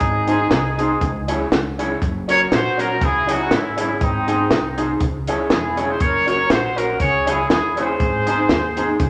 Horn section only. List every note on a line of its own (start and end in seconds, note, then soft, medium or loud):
0.00 1.29 D#4 medium
0.00 1.28 G#4 medium
2.30 2.40 A#4 medium
2.30 2.40 C#5 loud
2.53 2.77 F#4 medium
2.53 2.77 C5 loud
2.80 3.02 F#4 medium
2.80 3.02 A#4 medium
3.03 3.30 E4 medium
3.03 3.29 G#4 loud
3.31 3.52 D#4 medium
3.31 3.52 F#4 loud
3.55 3.78 C#4 medium
3.55 3.78 E4 medium
3.80 4.01 C#4 medium
3.80 4.01 E4 medium
4.03 4.79 C4 medium
4.03 4.79 D#4 medium
5.53 5.88 E4 medium
5.53 5.87 G#4 medium
5.90 6.02 G#4 medium
5.90 6.01 C5 medium
6.00 6.28 A#4 medium
6.00 6.27 C#5 loud
6.28 6.50 A#4 medium
6.28 6.49 C#5 loud
6.50 6.77 F#4 medium
6.50 6.77 C5 loud
6.78 7.01 F#4 medium
6.78 7.01 A#4 medium
7.01 7.26 G#4 medium
7.01 7.26 C#5 loud
7.28 7.50 E4 medium
7.28 7.49 G#4 loud
7.50 7.76 E4 medium
7.50 7.75 G#4 medium
7.78 9.10 G#4 medium
7.78 9.10 C5 medium